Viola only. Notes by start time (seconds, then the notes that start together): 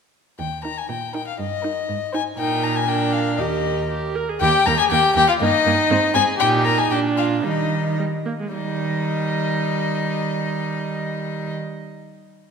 0.65 D#4
1.15 D#4
1.65 D#4
2.14 D#4
2.39 D#4
2.89 D4
3.39 G4
3.91 G4
4.16 A#4
4.29 G#4
4.41 A#3
4.67 A#3
4.92 A#3
5.16 A#3
5.42 A#3
5.66 A#3
5.90 C4
6.15 C4
6.40 D#4
6.92 D4
7.45 G3
7.99 G3
8.26 A#3
8.40 G#3
8.54 G3